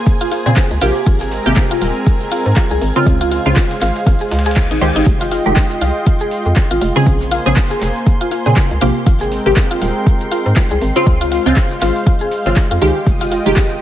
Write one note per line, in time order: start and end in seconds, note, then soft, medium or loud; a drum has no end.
0.00 0.42 C#3 medium
0.00 1.05 A#3 medium
0.00 0.42 C4 medium
0.00 0.42 G#4 loud
0.00 5.08 G#4 medium
0.00 1.05 C5 medium
0.00 1.05 G#5 medium
0.00 5.08 G#6 medium
0.06 kick loud
0.06 closed hi-hat medium
0.06 shaker soft
0.21 0.28 F4 loud
0.21 closed hi-hat medium
0.31 0.41 F4 medium
0.31 closed hi-hat medium
0.31 open hi-hat loud
0.31 shaker medium
0.46 0.53 A#2 medium
0.46 0.79 C#3 medium
0.46 0.79 C4 medium
0.46 0.79 G#4 medium
0.46 closed hi-hat soft
0.46 shaker soft
0.56 kick loud
0.56 snare loud
0.56 clap loud
0.56 closed hi-hat medium
0.56 shaker soft
0.71 0.78 C#2 medium
0.71 closed hi-hat medium
0.71 shaker soft
0.81 0.92 A#1 medium
0.81 1.42 C3 medium
0.81 1.42 A#3 medium
0.81 0.91 F4 loud
0.81 1.43 G4 medium
0.81 closed hi-hat medium
0.81 open hi-hat loud
0.81 shaker medium
0.96 shaker soft
1.06 1.39 G#1 loud
1.06 7.03 G#3 medium
1.06 3.04 C4 medium
1.06 1.16 F4 medium
1.06 3.05 A#4 medium
1.06 3.04 A#5 medium
1.06 kick loud
1.06 closed hi-hat medium
1.06 shaker soft
1.21 1.28 G#4 medium
1.21 snare soft
1.21 closed hi-hat medium
1.21 shaker soft
1.31 snare soft
1.31 closed hi-hat medium
1.31 open hi-hat loud
1.31 shaker medium
1.46 1.53 G#1 medium
1.46 2.92 C3 medium
1.46 2.92 A#3 medium
1.46 2.93 G4 loud
1.46 closed hi-hat soft
1.46 shaker soft
1.56 kick loud
1.56 snare loud
1.56 clap loud
1.56 closed hi-hat medium
1.56 shaker soft
1.71 1.78 F4 loud
1.71 closed hi-hat medium
1.71 shaker soft
1.81 1.92 D#1 medium
1.81 1.91 F4 medium
1.81 closed hi-hat medium
1.81 open hi-hat loud
1.81 shaker medium
1.96 shaker soft
2.06 kick loud
2.06 closed hi-hat medium
2.06 shaker soft
2.21 closed hi-hat medium
2.31 2.41 F4 loud
2.31 closed hi-hat medium
2.31 open hi-hat loud
2.31 shaker medium
2.46 2.53 G#2 medium
2.46 closed hi-hat soft
2.46 shaker soft
2.56 2.66 F4 medium
2.56 kick loud
2.56 snare loud
2.56 clap loud
2.56 closed hi-hat medium
2.56 shaker soft
2.71 2.78 C2 medium
2.71 2.78 G#4 medium
2.71 closed hi-hat medium
2.71 shaker soft
2.81 2.92 G#1 loud
2.81 closed hi-hat medium
2.81 open hi-hat loud
2.81 shaker medium
2.96 3.42 C#3 loud
2.96 3.42 C4 medium
2.96 3.42 F4 loud
2.96 shaker soft
3.06 3.39 C#2 loud
3.06 5.04 C5 medium
3.06 5.04 F5 loud
3.06 kick loud
3.06 closed hi-hat medium
3.06 shaker soft
3.21 3.28 F4 loud
3.21 snare soft
3.21 closed hi-hat medium
3.21 shaker soft
3.31 3.41 F4 medium
3.31 closed hi-hat medium
3.31 open hi-hat loud
3.31 shaker medium
3.46 3.53 C#2 medium
3.46 4.42 C#3 loud
3.46 4.42 C4 medium
3.46 4.42 F4 loud
3.46 closed hi-hat soft
3.46 shaker soft
3.56 kick loud
3.56 snare loud
3.56 clap loud
3.56 closed hi-hat medium
3.56 shaker soft
3.71 snare soft
3.71 closed hi-hat medium
3.71 shaker soft
3.81 3.92 G#1 medium
3.81 3.91 F4 loud
3.81 snare medium
3.81 clap soft
3.81 closed hi-hat medium
3.81 open hi-hat loud
3.81 shaker medium
3.96 snare soft
3.96 closed hi-hat soft
3.96 shaker soft
4.06 4.17 G#1 loud
4.06 4.16 F4 medium
4.06 kick loud
4.06 snare soft
4.06 closed hi-hat medium
4.06 reverse cymbal medium
4.06 shaker soft
4.21 4.28 G#4 medium
4.21 closed hi-hat medium
4.21 shaker soft
4.31 4.70 C#2 loud
4.31 snare medium
4.31 closed hi-hat medium
4.31 open hi-hat loud
4.31 shaker medium
4.39 snare medium
4.39 closed hi-hat medium
4.46 4.50 G#4 loud
4.46 snare medium
4.46 closed hi-hat medium
4.46 closed hi-hat soft
4.46 shaker soft
4.51 snare medium
4.51 closed hi-hat medium
4.56 4.66 F5 medium
4.56 kick loud
4.56 snare loud
4.56 clap loud
4.56 closed hi-hat medium
4.56 shaker soft
4.71 4.78 G#1 medium
4.71 4.81 D#4 medium
4.71 closed hi-hat medium
4.71 shaker soft
4.81 4.92 C#2 medium
4.81 5.42 D#3 loud
4.81 5.42 G#3 medium
4.81 5.42 G4 loud
4.81 4.91 C5 loud
4.81 closed hi-hat medium
4.81 open hi-hat loud
4.81 shaker medium
4.96 5.03 G#1 medium
4.96 5.00 D#4 loud
4.96 shaker soft
5.06 5.39 F1 loud
5.06 7.04 F4 medium
5.06 7.04 D#5 medium
5.06 7.04 G5 medium
5.06 13.08 C6 medium
5.06 13.08 C7 medium
5.06 kick loud
5.06 closed hi-hat medium
5.06 shaker soft
5.21 5.28 F4 loud
5.21 snare soft
5.21 closed hi-hat medium
5.21 shaker soft
5.31 5.41 F4 medium
5.31 snare soft
5.31 closed hi-hat medium
5.31 open hi-hat loud
5.31 shaker medium
5.46 5.53 F1 medium
5.46 6.92 D#3 medium
5.46 6.92 G#3 medium
5.46 6.92 G4 loud
5.46 closed hi-hat soft
5.46 shaker soft
5.56 kick loud
5.56 snare loud
5.56 clap loud
5.56 closed hi-hat medium
5.56 shaker soft
5.71 closed hi-hat medium
5.71 shaker soft
5.81 5.92 C2 medium
5.81 5.91 F4 loud
5.81 closed hi-hat medium
5.81 open hi-hat loud
5.81 shaker medium
5.96 shaker soft
6.06 6.16 F4 medium
6.06 kick loud
6.06 closed hi-hat medium
6.06 shaker soft
6.21 6.28 G#4 medium
6.21 closed hi-hat medium
6.31 closed hi-hat medium
6.31 open hi-hat loud
6.31 shaker medium
6.46 6.53 F2 medium
6.46 closed hi-hat soft
6.46 shaker soft
6.56 kick loud
6.56 snare loud
6.56 clap loud
6.56 closed hi-hat medium
6.56 shaker soft
6.71 6.78 G#1 medium
6.71 6.78 F4 loud
6.71 closed hi-hat medium
6.71 shaker soft
6.81 6.92 F1 loud
6.81 6.91 F4 medium
6.81 closed hi-hat medium
6.81 open hi-hat loud
6.81 shaker medium
6.96 7.42 C#3 loud
6.96 7.42 C4 medium
6.96 7.42 G#4 loud
6.96 shaker soft
7.06 7.39 A#1 loud
7.06 9.04 A#3 medium
7.06 9.04 C5 medium
7.06 9.05 G#5 loud
7.06 kick loud
7.06 closed hi-hat medium
7.06 closed hi-hat loud
7.06 shaker soft
7.21 snare soft
7.21 closed hi-hat medium
7.21 shaker soft
7.31 7.41 F4 loud
7.31 closed hi-hat medium
7.31 open hi-hat loud
7.31 shaker medium
7.46 7.53 A#1 medium
7.46 8.42 C#3 medium
7.46 8.42 C4 medium
7.46 8.43 G#4 loud
7.46 closed hi-hat soft
7.46 shaker soft
7.56 7.66 F4 medium
7.56 kick loud
7.56 snare loud
7.56 clap loud
7.56 closed hi-hat medium
7.56 shaker soft
7.71 7.78 G#4 medium
7.71 snare soft
7.71 closed hi-hat medium
7.71 shaker soft
7.81 7.92 F1 medium
7.81 snare medium
7.81 clap soft
7.81 closed hi-hat medium
7.81 open hi-hat loud
7.81 shaker medium
7.96 snare soft
7.96 shaker soft
8.06 kick loud
8.06 closed hi-hat medium
8.06 shaker soft
8.21 8.28 F4 loud
8.21 closed hi-hat medium
8.31 8.41 F4 medium
8.31 closed hi-hat medium
8.31 open hi-hat loud
8.31 shaker medium
8.46 8.53 A#2 medium
8.46 8.79 C#3 medium
8.46 8.79 C4 medium
8.46 8.79 G#4 medium
8.46 closed hi-hat soft
8.46 shaker soft
8.56 kick loud
8.56 snare loud
8.56 clap loud
8.56 closed hi-hat medium
8.56 shaker soft
8.71 8.78 C#2 medium
8.71 closed hi-hat medium
8.71 shaker soft
8.81 8.92 A#1 loud
8.81 9.42 C3 medium
8.81 9.42 A#3 medium
8.81 8.91 F4 loud
8.81 9.43 G4 medium
8.81 closed hi-hat medium
8.81 open hi-hat loud
8.81 shaker medium
8.96 shaker soft
9.06 9.39 G#1 loud
9.06 11.04 G#3 medium
9.06 11.05 C4 medium
9.06 9.16 F4 medium
9.06 11.04 A#4 medium
9.06 11.04 G5 medium
9.06 kick loud
9.06 closed hi-hat medium
9.06 shaker soft
9.21 9.28 G#4 medium
9.21 snare soft
9.21 closed hi-hat medium
9.21 shaker soft
9.32 snare soft
9.32 closed hi-hat medium
9.32 open hi-hat loud
9.32 shaker medium
9.46 9.53 G#1 medium
9.46 10.92 C3 medium
9.46 10.92 A#3 medium
9.46 10.93 G4 loud
9.46 closed hi-hat soft
9.46 shaker soft
9.56 kick loud
9.56 snare loud
9.56 clap loud
9.56 closed hi-hat medium
9.56 shaker soft
9.71 9.78 F4 loud
9.71 closed hi-hat medium
9.71 shaker soft
9.81 9.92 D#1 medium
9.81 9.91 F4 medium
9.81 closed hi-hat medium
9.81 open hi-hat loud
9.81 shaker medium
9.96 shaker soft
10.06 kick loud
10.06 closed hi-hat medium
10.06 shaker soft
10.21 closed hi-hat medium
10.31 10.41 F4 loud
10.31 closed hi-hat medium
10.31 open hi-hat loud
10.31 shaker medium
10.46 10.53 G#2 medium
10.46 closed hi-hat soft
10.46 shaker soft
10.56 10.66 F4 medium
10.56 kick loud
10.56 snare loud
10.56 clap loud
10.56 closed hi-hat medium
10.56 shaker soft
10.71 10.78 C2 medium
10.71 10.78 G#4 medium
10.71 closed hi-hat medium
10.71 shaker soft
10.81 10.92 G#1 loud
10.81 closed hi-hat medium
10.81 open hi-hat loud
10.81 shaker medium
10.96 11.42 C#3 loud
10.96 11.42 C4 medium
10.96 11.42 F4 loud
10.96 shaker soft
11.06 11.39 C#2 loud
11.06 13.82 G#3 medium
11.06 13.04 C5 medium
11.06 13.04 F5 medium
11.06 kick loud
11.06 closed hi-hat medium
11.06 shaker soft
11.21 11.28 F4 loud
11.21 snare soft
11.21 closed hi-hat medium
11.21 shaker soft
11.32 11.42 F4 medium
11.32 closed hi-hat medium
11.32 open hi-hat loud
11.32 shaker medium
11.46 11.53 C#2 medium
11.46 12.42 C#3 loud
11.46 12.42 C4 medium
11.46 12.43 F4 loud
11.46 closed hi-hat soft
11.46 shaker soft
11.56 kick loud
11.56 snare loud
11.56 clap loud
11.56 closed hi-hat medium
11.56 shaker soft
11.71 snare soft
11.71 closed hi-hat medium
11.71 shaker soft
11.81 11.92 G#1 medium
11.81 11.91 F4 loud
11.81 snare medium
11.81 clap soft
11.81 closed hi-hat medium
11.81 open hi-hat loud
11.81 shaker medium
11.96 snare soft
11.96 closed hi-hat soft
11.96 shaker soft
12.06 12.17 F4 medium
12.06 kick loud
12.06 closed hi-hat medium
12.06 shaker soft
12.21 12.28 G#4 medium
12.21 closed hi-hat soft
12.32 closed hi-hat medium
12.32 open hi-hat loud
12.32 shaker medium
12.46 12.53 G#1 medium
12.46 12.79 C#3 medium
12.46 12.79 C4 medium
12.46 12.79 F4 medium
12.46 closed hi-hat soft
12.46 shaker soft
12.56 kick loud
12.56 snare loud
12.56 clap loud
12.56 closed hi-hat medium
12.56 shaker soft
12.71 12.78 F2 medium
12.71 12.78 F4 loud
12.71 closed hi-hat medium
12.71 shaker soft
12.81 12.92 C#2 loud
12.81 13.42 D#3 medium
12.81 13.43 G#3 medium
12.81 12.91 F4 medium
12.81 13.43 G4 medium
12.81 closed hi-hat medium
12.81 open hi-hat loud
12.81 shaker medium
12.96 shaker soft
13.06 13.39 F1 loud
13.06 13.82 F4 medium
13.06 13.82 D#5 medium
13.06 13.82 G5 medium
13.06 13.82 D#6 medium
13.06 13.82 D#7 medium
13.06 kick loud
13.06 closed hi-hat medium
13.06 shaker soft
13.21 13.28 F4 loud
13.21 snare soft
13.21 closed hi-hat medium
13.21 shaker soft
13.31 13.41 F4 medium
13.31 snare soft
13.31 closed hi-hat medium
13.31 open hi-hat loud
13.31 shaker medium
13.46 13.53 F1 medium
13.46 13.82 D#3 medium
13.46 13.82 G#3 medium
13.46 13.82 G4 loud
13.46 closed hi-hat soft
13.46 shaker soft
13.56 kick loud
13.56 snare loud
13.56 clap loud
13.56 closed hi-hat medium
13.56 shaker soft
13.71 closed hi-hat medium
13.71 shaker soft